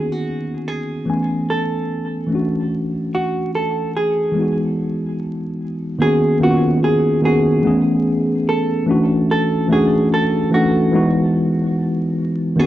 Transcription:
0.00 1.05 D#3 medium
0.00 1.03 A#3 medium
0.00 1.04 B3 soft
0.00 1.05 C#4 medium
0.00 1.08 D#4 soft
0.00 1.06 F#4 medium
0.00 0.12 G#4 loud
0.00 1.08 G#4 medium
0.12 0.68 F#4 medium
0.68 1.45 G#4 medium
1.05 2.25 E3 medium
1.05 2.27 A3 medium
1.05 2.30 B3 medium
1.05 2.30 C#4 medium
1.10 2.31 G#5 medium
1.50 2.68 A4 medium
2.26 4.30 E3 medium
2.26 4.31 A3 medium
2.31 4.32 C#4 medium
2.31 4.33 D4 medium
2.35 4.34 F#4 medium
3.15 3.50 F#4 medium
3.55 3.91 A4 medium
3.97 4.59 G#4 medium
4.32 5.95 E3 medium
4.32 5.96 G#3 medium
4.36 5.97 B3 medium
4.36 5.98 D#4 medium
4.40 5.99 F#4 medium
5.99 6.36 D#3 medium
5.99 6.37 A#3 medium
5.99 6.37 B3 medium
5.99 6.38 C#4 medium
5.99 6.38 F#4 medium
5.99 6.38 G#4 loud
6.40 7.15 D#3 medium
6.40 7.15 A#3 medium
6.40 7.16 B3 medium
6.40 7.16 C#4 medium
6.40 6.79 F#4 medium
6.44 6.51 F4 medium
6.50 7.20 F#4 medium
6.84 7.20 G#4 medium
7.22 7.64 D#3 medium
7.22 7.64 A#3 medium
7.22 7.63 B3 medium
7.22 7.65 C#4 medium
7.22 8.43 G#4 medium
7.26 7.66 F#4 medium
7.63 8.75 E3 medium
7.63 8.76 A3 medium
7.63 8.76 B3 medium
7.63 8.77 C#4 medium
7.67 8.77 G#4 medium
8.49 8.85 A4 medium
8.86 9.61 E3 medium
8.86 9.62 A3 medium
8.86 9.62 C#4 medium
8.86 9.63 D4 medium
8.91 9.64 F#4 medium
9.31 9.67 A4 medium
9.68 10.43 E3 medium
9.68 10.44 A3 medium
9.68 10.45 C#4 medium
9.68 10.45 D4 medium
9.73 10.46 F#4 medium
9.73 10.08 G#4 medium
10.14 10.49 A4 medium
10.51 10.90 E3 medium
10.51 10.93 A3 medium
10.51 10.93 C#4 medium
10.51 10.94 D4 medium
10.51 12.60 F#4 medium
10.55 10.94 A4 medium
10.92 12.41 E3 medium
10.92 12.42 G#3 medium
10.92 12.42 B3 medium
10.92 12.43 D#4 medium
10.96 12.43 F#4 medium
12.56 12.66 D#3 medium
12.56 12.66 A#3 medium
12.56 12.66 B3 medium
12.56 12.66 C#4 medium
12.56 12.66 G#4 loud
12.60 12.66 F#4 medium

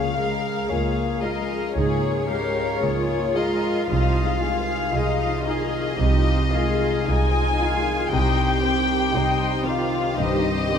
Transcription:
0.00 0.55 C#2 soft
0.00 1.73 C#2 soft
0.00 3.51 C#3 soft
0.00 0.69 G#3 soft
0.00 0.12 A#3 soft
0.00 0.12 F4 soft
0.00 1.04 F4 soft
0.00 0.12 G#4 soft
0.00 0.12 C#5 soft
0.00 1.23 F5 medium
0.15 0.70 G#3 soft
0.15 1.02 G#3 soft
0.15 0.70 G#4 soft
0.15 0.70 A#4 soft
0.15 0.69 F5 soft
0.34 2.46 A#4 soft
0.69 1.62 C#2 soft
0.69 1.40 G#3 soft
0.69 1.23 A#3 soft
0.69 1.23 F4 soft
0.69 1.23 G#4 soft
0.69 1.56 A#4 soft
0.69 1.23 C#5 soft
1.05 3.18 F4 soft
1.22 1.76 G#3 soft
1.22 2.09 F4 soft
1.22 1.76 G#4 soft
1.22 1.76 A#4 soft
1.22 1.76 D#5 soft
1.22 1.76 F5 soft
1.41 2.11 G#3 soft
1.75 2.68 C#2 medium
1.75 2.62 G#2 soft
1.75 2.26 A#3 soft
1.75 3.94 C#4 soft
1.75 2.26 F4 soft
1.75 2.25 G#4 soft
1.75 2.26 G#4 soft
1.75 2.26 C#5 soft
1.75 3.33 C#5 medium
2.12 2.82 G#3 soft
2.29 2.83 G#3 soft
2.29 3.15 G#3 soft
2.29 2.83 G4 soft
2.29 2.83 A#4 soft
2.29 2.83 F5 soft
2.48 3.94 A#4 soft
2.82 3.75 C#2 soft
2.82 3.53 G#3 soft
2.82 3.36 A#3 soft
2.82 4.90 F4 soft
2.82 3.36 F4 soft
2.82 3.36 G#4 soft
2.82 3.68 A#4 soft
2.82 3.36 C#5 soft
3.19 7.09 F4 soft
3.35 3.89 G#3 soft
3.35 3.89 F4 soft
3.35 3.89 G#4 soft
3.35 3.90 A#4 soft
3.35 3.89 D#5 medium
3.35 3.90 F5 soft
3.54 4.23 G#3 soft
3.88 4.80 C2 soft
3.88 5.96 C2 soft
3.88 5.98 C3 soft
3.88 4.38 F3 soft
3.88 4.38 D#4 soft
3.88 4.38 F4 soft
3.88 4.38 D#5 soft
3.88 5.43 F5 medium
4.24 4.93 G#3 soft
4.41 4.94 D#3 soft
4.41 5.26 G#3 soft
4.41 4.94 F4 soft
4.41 4.94 G#4 soft
4.41 4.94 F5 soft
4.60 8.16 C5 soft
4.93 5.84 C2 soft
4.93 5.46 F3 soft
4.93 5.63 G#3 soft
4.93 5.46 D#4 soft
4.93 5.47 F4 soft
4.93 5.78 G#4 soft
4.93 5.47 D#5 soft
5.29 7.41 D#4 soft
5.46 5.99 D#3 soft
5.46 6.31 D#4 soft
5.46 5.99 F4 soft
5.46 5.98 G#4 soft
5.46 5.99 G#4 soft
5.46 7.08 D#5 medium
5.46 5.99 F5 soft
5.64 7.06 G#3 soft
5.98 6.93 C2 medium
5.98 8.09 C2 soft
5.98 8.10 C3 soft
5.98 6.49 F3 soft
5.98 6.49 D#4 soft
5.98 6.50 F4 soft
5.98 6.53 G4 soft
5.98 6.50 D#5 soft
6.35 8.45 C4 soft
6.51 7.07 D#3 soft
6.51 7.07 F4 soft
6.51 7.07 G#4 soft
6.51 7.07 F5 soft
6.56 7.41 G#3 soft
6.72 8.16 G#4 soft
7.07 7.97 C2 medium
7.07 7.60 F3 soft
7.07 7.76 G#3 soft
7.07 7.60 D#4 soft
7.07 7.59 D#4 soft
7.07 7.60 F4 soft
7.07 7.92 G#4 soft
7.07 7.60 D#5 soft
7.07 8.11 G#5 medium
7.43 9.49 D#4 soft
7.59 8.11 D#3 soft
7.59 8.13 D#4 soft
7.59 8.11 F4 soft
7.59 8.12 G#4 soft
7.59 8.12 F5 soft
7.77 8.16 G#3 soft
8.10 9.01 C2 medium
8.10 10.16 C2 soft
8.10 10.79 C3 soft
8.10 8.59 G3 soft
8.10 8.59 D#4 soft
8.10 9.15 G4 soft
8.10 8.60 C5 soft
8.10 8.60 D#5 soft
8.10 9.63 G5 medium
8.46 9.14 C4 soft
8.63 9.14 D#3 soft
8.63 9.15 C4 soft
8.63 9.46 C4 soft
8.63 9.15 G4 soft
8.63 9.14 C5 soft
8.80 10.79 G5 soft
9.13 10.04 C2 medium
9.13 9.66 G3 soft
9.13 9.84 C4 soft
9.13 9.66 D#4 soft
9.13 9.67 D#4 soft
9.13 9.98 G4 soft
9.13 9.66 C5 soft
9.13 9.67 D#5 soft
9.50 10.79 D#4 soft
9.65 10.18 D#3 soft
9.65 10.18 C4 soft
9.65 10.51 D#4 soft
9.65 10.19 F4 medium
9.65 10.19 G4 soft
9.65 10.18 C5 soft
9.65 10.18 F5 medium
9.85 10.53 C4 soft
10.17 10.79 C2 medium
10.17 10.79 G2 soft
10.17 10.79 D#3 soft
10.17 10.66 G3 soft
10.17 10.66 D#4 soft
10.17 10.79 G4 soft
10.17 10.68 C5 soft
10.17 10.79 D#5 medium
10.17 10.68 D#5 soft
10.55 10.79 C4 soft
10.69 10.79 D#3 soft
10.69 10.79 C4 soft
10.69 10.79 G4 soft
10.69 10.79 C5 soft

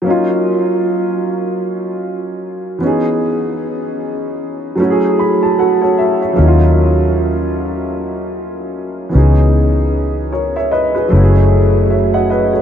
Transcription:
0.02 2.76 F#3 medium
0.02 2.77 A#3 soft
0.06 2.78 C#4 medium
0.06 2.79 D#4 medium
0.10 2.80 F4 medium
2.78 4.73 E3 medium
2.78 4.75 B3 medium
2.83 4.76 C#4 soft
2.83 4.77 D#4 medium
2.87 4.78 G#4 medium
4.76 6.32 F#3 medium
4.76 6.33 A3 medium
4.80 6.34 C#4 medium
4.80 6.35 E4 medium
4.84 4.89 F#4 medium
4.91 5.62 G#4 medium
5.19 5.40 B5 medium
5.43 5.58 A5 medium
5.59 5.81 F#4 soft
5.59 5.80 A4 soft
5.59 5.95 F#5 medium
5.81 6.19 A4 soft
5.81 6.19 C#5 medium
5.98 6.20 E5 medium
6.22 6.59 C#5 soft
6.22 6.59 E5 soft
6.33 9.07 F#3 medium
6.33 9.08 A#3 medium
6.37 9.10 D#2 medium
6.37 9.09 C#4 medium
6.37 9.11 D#4 medium
6.42 6.47 E4 medium
6.48 9.15 F4 medium
9.09 11.05 E3 medium
9.09 11.06 B3 soft
9.14 11.08 C#2 medium
9.14 11.07 C#4 soft
9.14 11.08 D#4 medium
9.14 10.32 G#4 medium
10.32 10.54 A#4 soft
10.32 10.54 C#5 medium
10.56 10.71 C#5 soft
10.56 10.71 E5 medium
10.71 10.93 B4 medium
10.71 10.93 D#5 medium
10.95 11.21 G#4 soft
10.95 11.32 B4 medium
11.08 12.62 F#3 medium
11.08 12.62 A3 medium
11.12 12.62 F#1 medium
11.12 12.62 C#4 medium
11.12 12.62 E4 medium
11.16 11.21 F#4 medium
11.23 11.94 G#4 medium
11.90 12.12 C#5 soft
11.90 12.12 E5 soft
12.14 12.29 D#5 soft
12.14 12.29 F#5 medium
12.30 12.52 B4 soft
12.30 12.51 D#5 medium
12.53 12.62 A4 soft
12.53 12.62 C#5 soft

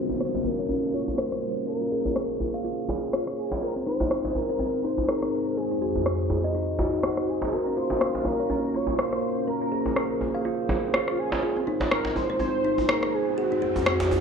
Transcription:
0.00 3.58 A#3 medium
0.00 3.58 C#4 medium
0.00 1.65 A#4 medium
0.00 0.19 C5 medium
0.00 5.53 F5 medium
0.00 downlifter medium
0.09 0.16 F#4 medium
0.09 djembe slap medium
0.09 djembe tone medium
0.21 0.47 C5 loud
0.21 cross-stick loud
0.34 djembe slap medium
0.44 0.94 A#4 loud
0.44 djembe tone medium
0.59 0.65 C#5 medium
0.69 0.82 C#4 medium
0.69 djembe tone medium
0.94 1.07 F4 medium
0.94 1.17 C#5 loud
1.08 djembe tone medium
1.18 1.31 A#4 medium
1.18 1.64 C5 loud
1.18 cross-stick loud
1.32 cross-stick medium
1.66 3.60 G#4 medium
1.66 1.80 A#4 medium
1.66 2.61 A#4 medium
1.66 7.48 C5 medium
1.81 1.90 F4 medium
1.91 2.05 G#4 medium
2.05 2.11 A#4 medium
2.05 djembe tone medium
2.16 cross-stick loud
2.40 djembe tone medium
2.54 2.60 F5 medium
2.65 2.77 F4 loud
2.89 3.02 G#4 medium
2.89 djembe slap medium
2.89 djembe tone medium
3.13 3.25 F4 medium
3.13 3.26 C#5 medium
3.13 cross-stick loud
3.27 cross-stick medium
3.38 3.49 G#4 medium
3.52 djembe slap medium
3.62 7.49 G#3 medium
3.62 7.49 C4 medium
3.62 5.55 D#4 medium
3.62 3.75 F4 medium
3.62 3.74 A#4 loud
3.76 3.86 C4 medium
3.86 4.00 D#4 medium
3.86 4.37 C5 loud
4.00 4.06 F4 medium
4.00 djembe slap medium
4.00 djembe tone medium
4.11 cross-stick loud
4.25 djembe slap medium
4.35 4.86 A#4 loud
4.35 djembe tone medium
4.49 4.55 C5 medium
4.59 4.72 C4 medium
4.59 djembe tone medium
4.84 4.97 D#4 medium
4.84 5.08 C5 loud
4.98 djembe tone medium
5.08 5.21 G#4 medium
5.08 5.58 A#4 medium
5.08 cross-stick loud
5.22 cross-stick medium
5.57 7.51 F2 medium
5.57 7.50 D#4 medium
5.57 6.55 G#4 medium
5.57 5.70 G#4 loud
5.71 5.81 D#4 medium
5.82 5.95 F#4 medium
5.95 6.01 G#4 medium
5.95 djembe tone medium
6.06 cross-stick loud
6.30 djembe tone medium
6.44 6.50 D#5 medium
6.55 6.67 D#4 medium
6.79 6.92 F#4 medium
6.79 djembe slap medium
6.79 djembe tone medium
7.03 7.30 F#4 medium
7.03 7.16 C5 medium
7.03 cross-stick loud
7.17 cross-stick medium
7.28 7.55 G#4 medium
7.42 djembe slap medium
7.52 11.39 A#3 medium
7.52 11.39 C#4 medium
7.52 7.65 F#4 medium
7.52 9.46 A#4 medium
7.52 7.77 A#4 loud
7.52 9.46 F5 medium
7.66 7.76 C#4 medium
7.77 7.90 F4 medium
7.77 8.28 C5 loud
7.90 7.96 F#4 medium
7.90 djembe slap medium
7.90 djembe tone medium
8.01 cross-stick loud
8.15 djembe slap medium
8.25 8.77 A#4 loud
8.25 djembe tone medium
8.39 8.45 C#5 medium
8.50 8.62 C#4 medium
8.50 djembe tone medium
8.74 8.88 F4 medium
8.74 8.99 C#5 loud
8.87 djembe tone medium
8.99 9.11 A#4 medium
8.99 9.45 C5 loud
8.99 cross-stick loud
9.13 cross-stick medium
9.47 13.34 F4 medium
9.47 11.41 G#4 medium
9.47 9.60 A#4 medium
9.47 10.41 A#4 medium
9.47 11.41 C5 medium
9.61 9.71 F4 medium
9.72 9.85 G#4 medium
9.86 9.91 A#4 medium
9.86 djembe tone medium
9.96 cross-stick medium
10.21 djembe tone medium
10.35 10.40 F5 medium
10.45 10.58 F4 medium
10.69 10.83 G#4 medium
10.69 djembe slap medium
10.69 djembe tone medium
10.94 11.20 F4 medium
10.94 11.06 C#5 medium
10.94 cross-stick loud
11.08 cross-stick medium
11.18 11.67 G#4 loud
11.32 djembe slap medium
11.42 13.36 G#3 medium
11.42 14.20 C4 medium
11.42 13.36 D#4 medium
11.42 11.55 F4 loud
11.42 14.20 C5 medium
11.42 riser medium
11.57 11.66 C4 medium
11.67 11.80 D#4 loud
11.80 11.87 F4 medium
11.80 djembe slap medium
11.80 djembe tone medium
11.91 12.17 A#4 loud
11.91 cross-stick medium
12.05 djembe slap medium
12.15 12.39 C5 loud
12.15 djembe tone medium
12.30 12.35 C5 medium
12.39 12.53 C4 medium
12.39 12.90 C5 loud
12.39 djembe tone medium
12.64 12.78 D#4 medium
12.78 djembe tone medium
12.89 13.01 G#4 medium
12.89 13.15 A#4 loud
12.89 cross-stick loud
13.03 cross-stick medium
13.13 13.37 G#4 medium
13.37 14.20 F2 medium
13.37 14.20 G#3 medium
13.37 14.20 D#4 medium
13.37 14.20 F#4 medium
13.37 14.20 F#4 loud
13.37 13.50 G#4 loud
13.52 13.61 D#4 medium
13.62 13.75 F#4 loud
13.76 13.82 G#4 medium
13.76 djembe tone medium
13.86 cross-stick loud
14.00 djembe slap medium
14.11 djembe tone medium

